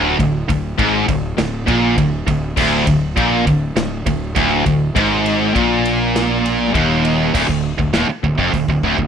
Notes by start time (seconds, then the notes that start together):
Already playing: D1 D2
0.18 D1 D2, kick, ride
0.49 D1 D2, kick, ride
0.78 G#1 G#2, kick, ride
1.08 D1 D2, kick, ride
1.37 D1 D2, snare, ride
1.66 A#1 A#2, kick, ride
1.97 D1 D2, kick, ride
2.26 D1 D2, kick, ride
2.57 D1 D2, kick, crash
2.87 D1 D2, kick, ride
3.16 A#1 A#2, kick, ride
3.46 D1 D2, kick, ride
3.76 D1 D2, snare, ride
4.06 D1 D2, kick, ride
4.36 D1 D2, kick, ride
4.66 D1 D2, kick, ride
4.95 G#1 G#2, kick, ride
5.26 ride
5.55 A#1 A#2, kick, ride
5.85 ride
6.16 snare, ride
6.46 ride
6.75 D#1 D#2, kick, ride
7.05 ride
7.34 D1 D2, kick, crash
7.49 D1 D2, kick
7.79 D1 D2, kick
7.94 D#1 D#2, snare, crash
8.09 muted distorted electric guitar stroke, muted fingered electric bass stroke
8.23 D1 D2, kick
8.38 F1 F2, kick
8.53 D1 D2, kick, crash
8.68 D1 D2, kick
8.83 D1 D2, kick
8.98 D1 D2, kick